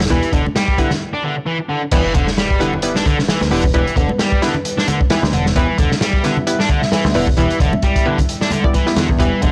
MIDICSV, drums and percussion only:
0, 0, Header, 1, 2, 480
1, 0, Start_track
1, 0, Key_signature, 1, "minor"
1, 0, Tempo, 454545
1, 111, Time_signature, 4, 2, 24, 8
1, 10050, End_track
2, 0, Start_track
2, 0, Title_t, "Drums"
2, 4, Note_on_c, 9, 38, 94
2, 5, Note_on_c, 9, 42, 69
2, 53, Note_off_c, 9, 42, 0
2, 53, Note_on_c, 9, 42, 61
2, 59, Note_off_c, 9, 38, 0
2, 59, Note_on_c, 9, 38, 91
2, 98, Note_off_c, 9, 42, 0
2, 98, Note_on_c, 9, 42, 83
2, 110, Note_on_c, 9, 36, 117
2, 164, Note_off_c, 9, 38, 0
2, 203, Note_off_c, 9, 42, 0
2, 215, Note_off_c, 9, 36, 0
2, 239, Note_on_c, 9, 42, 43
2, 345, Note_off_c, 9, 42, 0
2, 345, Note_on_c, 9, 36, 97
2, 345, Note_on_c, 9, 42, 67
2, 450, Note_off_c, 9, 36, 0
2, 451, Note_off_c, 9, 42, 0
2, 490, Note_on_c, 9, 63, 76
2, 588, Note_on_c, 9, 38, 127
2, 590, Note_on_c, 9, 42, 83
2, 596, Note_off_c, 9, 63, 0
2, 693, Note_off_c, 9, 38, 0
2, 695, Note_off_c, 9, 42, 0
2, 719, Note_on_c, 9, 36, 86
2, 825, Note_off_c, 9, 36, 0
2, 825, Note_on_c, 9, 36, 79
2, 827, Note_on_c, 9, 42, 62
2, 930, Note_off_c, 9, 36, 0
2, 932, Note_off_c, 9, 42, 0
2, 955, Note_on_c, 9, 38, 45
2, 961, Note_on_c, 9, 64, 80
2, 1061, Note_off_c, 9, 38, 0
2, 1066, Note_off_c, 9, 64, 0
2, 2022, Note_on_c, 9, 42, 95
2, 2028, Note_on_c, 9, 36, 113
2, 2031, Note_on_c, 9, 49, 87
2, 2128, Note_off_c, 9, 42, 0
2, 2133, Note_off_c, 9, 36, 0
2, 2137, Note_off_c, 9, 49, 0
2, 2267, Note_on_c, 9, 42, 67
2, 2271, Note_on_c, 9, 36, 92
2, 2372, Note_off_c, 9, 42, 0
2, 2376, Note_off_c, 9, 36, 0
2, 2402, Note_on_c, 9, 38, 55
2, 2507, Note_off_c, 9, 38, 0
2, 2513, Note_on_c, 9, 38, 116
2, 2513, Note_on_c, 9, 42, 90
2, 2619, Note_off_c, 9, 38, 0
2, 2619, Note_off_c, 9, 42, 0
2, 2645, Note_on_c, 9, 36, 101
2, 2751, Note_off_c, 9, 36, 0
2, 2753, Note_on_c, 9, 42, 71
2, 2858, Note_off_c, 9, 42, 0
2, 2887, Note_on_c, 9, 64, 85
2, 2980, Note_on_c, 9, 42, 92
2, 2993, Note_off_c, 9, 64, 0
2, 3086, Note_off_c, 9, 42, 0
2, 3123, Note_on_c, 9, 38, 65
2, 3229, Note_off_c, 9, 38, 0
2, 3229, Note_on_c, 9, 36, 90
2, 3235, Note_on_c, 9, 42, 73
2, 3335, Note_off_c, 9, 36, 0
2, 3340, Note_off_c, 9, 42, 0
2, 3366, Note_on_c, 9, 38, 37
2, 3469, Note_off_c, 9, 38, 0
2, 3469, Note_on_c, 9, 38, 116
2, 3476, Note_on_c, 9, 42, 91
2, 3575, Note_off_c, 9, 38, 0
2, 3582, Note_off_c, 9, 42, 0
2, 3600, Note_on_c, 9, 63, 63
2, 3604, Note_on_c, 9, 38, 43
2, 3702, Note_on_c, 9, 46, 82
2, 3706, Note_off_c, 9, 63, 0
2, 3710, Note_off_c, 9, 38, 0
2, 3808, Note_off_c, 9, 46, 0
2, 3844, Note_on_c, 9, 36, 95
2, 3949, Note_off_c, 9, 36, 0
2, 3951, Note_on_c, 9, 42, 94
2, 3957, Note_on_c, 9, 36, 106
2, 4057, Note_off_c, 9, 42, 0
2, 4063, Note_off_c, 9, 36, 0
2, 4090, Note_on_c, 9, 42, 41
2, 4183, Note_on_c, 9, 36, 91
2, 4189, Note_off_c, 9, 42, 0
2, 4189, Note_on_c, 9, 42, 77
2, 4288, Note_off_c, 9, 36, 0
2, 4294, Note_off_c, 9, 42, 0
2, 4323, Note_on_c, 9, 63, 80
2, 4428, Note_off_c, 9, 63, 0
2, 4428, Note_on_c, 9, 38, 111
2, 4428, Note_on_c, 9, 42, 87
2, 4533, Note_off_c, 9, 38, 0
2, 4533, Note_off_c, 9, 42, 0
2, 4563, Note_on_c, 9, 36, 104
2, 4669, Note_off_c, 9, 36, 0
2, 4669, Note_on_c, 9, 38, 47
2, 4671, Note_on_c, 9, 42, 63
2, 4774, Note_off_c, 9, 38, 0
2, 4776, Note_off_c, 9, 42, 0
2, 4799, Note_on_c, 9, 64, 77
2, 4905, Note_off_c, 9, 64, 0
2, 4910, Note_on_c, 9, 42, 87
2, 5016, Note_off_c, 9, 42, 0
2, 5051, Note_on_c, 9, 38, 59
2, 5150, Note_on_c, 9, 42, 67
2, 5154, Note_on_c, 9, 63, 95
2, 5156, Note_off_c, 9, 38, 0
2, 5255, Note_off_c, 9, 42, 0
2, 5260, Note_off_c, 9, 63, 0
2, 5288, Note_on_c, 9, 36, 100
2, 5384, Note_on_c, 9, 42, 93
2, 5391, Note_on_c, 9, 38, 122
2, 5393, Note_on_c, 9, 63, 56
2, 5394, Note_off_c, 9, 36, 0
2, 5490, Note_off_c, 9, 42, 0
2, 5496, Note_off_c, 9, 38, 0
2, 5498, Note_off_c, 9, 63, 0
2, 5528, Note_on_c, 9, 38, 60
2, 5626, Note_on_c, 9, 42, 71
2, 5633, Note_off_c, 9, 38, 0
2, 5732, Note_off_c, 9, 42, 0
2, 5766, Note_on_c, 9, 38, 53
2, 5868, Note_on_c, 9, 42, 90
2, 5870, Note_on_c, 9, 36, 115
2, 5872, Note_off_c, 9, 38, 0
2, 5974, Note_off_c, 9, 42, 0
2, 5976, Note_off_c, 9, 36, 0
2, 6107, Note_on_c, 9, 36, 90
2, 6107, Note_on_c, 9, 42, 69
2, 6212, Note_off_c, 9, 42, 0
2, 6213, Note_off_c, 9, 36, 0
2, 6247, Note_on_c, 9, 38, 55
2, 6347, Note_off_c, 9, 38, 0
2, 6347, Note_on_c, 9, 38, 121
2, 6354, Note_on_c, 9, 42, 98
2, 6453, Note_off_c, 9, 38, 0
2, 6460, Note_off_c, 9, 42, 0
2, 6474, Note_on_c, 9, 36, 93
2, 6580, Note_off_c, 9, 36, 0
2, 6584, Note_on_c, 9, 38, 38
2, 6588, Note_on_c, 9, 42, 64
2, 6690, Note_off_c, 9, 38, 0
2, 6694, Note_off_c, 9, 42, 0
2, 6725, Note_on_c, 9, 64, 80
2, 6831, Note_off_c, 9, 64, 0
2, 6832, Note_on_c, 9, 42, 94
2, 6938, Note_off_c, 9, 42, 0
2, 6969, Note_on_c, 9, 38, 61
2, 7067, Note_on_c, 9, 36, 96
2, 7068, Note_on_c, 9, 42, 62
2, 7074, Note_off_c, 9, 38, 0
2, 7173, Note_off_c, 9, 36, 0
2, 7174, Note_off_c, 9, 42, 0
2, 7204, Note_on_c, 9, 38, 40
2, 7306, Note_off_c, 9, 38, 0
2, 7306, Note_on_c, 9, 38, 120
2, 7315, Note_on_c, 9, 42, 85
2, 7411, Note_off_c, 9, 38, 0
2, 7421, Note_off_c, 9, 42, 0
2, 7444, Note_on_c, 9, 38, 46
2, 7447, Note_on_c, 9, 63, 66
2, 7540, Note_on_c, 9, 46, 88
2, 7550, Note_off_c, 9, 38, 0
2, 7553, Note_off_c, 9, 63, 0
2, 7646, Note_off_c, 9, 46, 0
2, 7682, Note_on_c, 9, 36, 102
2, 7780, Note_off_c, 9, 36, 0
2, 7780, Note_on_c, 9, 36, 104
2, 7783, Note_on_c, 9, 42, 85
2, 7886, Note_off_c, 9, 36, 0
2, 7888, Note_off_c, 9, 42, 0
2, 7923, Note_on_c, 9, 42, 43
2, 8027, Note_on_c, 9, 36, 96
2, 8028, Note_off_c, 9, 42, 0
2, 8028, Note_on_c, 9, 42, 81
2, 8132, Note_off_c, 9, 36, 0
2, 8134, Note_off_c, 9, 42, 0
2, 8162, Note_on_c, 9, 63, 90
2, 8262, Note_on_c, 9, 42, 60
2, 8267, Note_on_c, 9, 36, 92
2, 8268, Note_off_c, 9, 63, 0
2, 8368, Note_off_c, 9, 42, 0
2, 8372, Note_off_c, 9, 36, 0
2, 8403, Note_on_c, 9, 36, 109
2, 8404, Note_on_c, 9, 42, 84
2, 8509, Note_off_c, 9, 36, 0
2, 8510, Note_off_c, 9, 42, 0
2, 8642, Note_on_c, 9, 36, 91
2, 8647, Note_on_c, 9, 42, 69
2, 8648, Note_on_c, 9, 64, 75
2, 8748, Note_off_c, 9, 36, 0
2, 8752, Note_off_c, 9, 42, 0
2, 8753, Note_on_c, 9, 42, 96
2, 8754, Note_off_c, 9, 64, 0
2, 8858, Note_off_c, 9, 42, 0
2, 8885, Note_on_c, 9, 38, 58
2, 8981, Note_on_c, 9, 63, 97
2, 8991, Note_off_c, 9, 38, 0
2, 8991, Note_on_c, 9, 42, 64
2, 9087, Note_off_c, 9, 63, 0
2, 9096, Note_off_c, 9, 42, 0
2, 9127, Note_on_c, 9, 36, 97
2, 9231, Note_on_c, 9, 42, 61
2, 9231, Note_on_c, 9, 63, 59
2, 9233, Note_off_c, 9, 36, 0
2, 9238, Note_on_c, 9, 36, 80
2, 9336, Note_off_c, 9, 42, 0
2, 9336, Note_off_c, 9, 63, 0
2, 9344, Note_off_c, 9, 36, 0
2, 9360, Note_on_c, 9, 38, 44
2, 9465, Note_off_c, 9, 38, 0
2, 9465, Note_on_c, 9, 42, 88
2, 9469, Note_on_c, 9, 38, 97
2, 9570, Note_off_c, 9, 42, 0
2, 9575, Note_off_c, 9, 38, 0
2, 9601, Note_on_c, 9, 36, 78
2, 9700, Note_off_c, 9, 36, 0
2, 9700, Note_on_c, 9, 36, 126
2, 9711, Note_on_c, 9, 42, 96
2, 9806, Note_off_c, 9, 36, 0
2, 9817, Note_off_c, 9, 42, 0
2, 9949, Note_on_c, 9, 42, 67
2, 9959, Note_on_c, 9, 36, 101
2, 10050, Note_off_c, 9, 36, 0
2, 10050, Note_off_c, 9, 42, 0
2, 10050, End_track
0, 0, End_of_file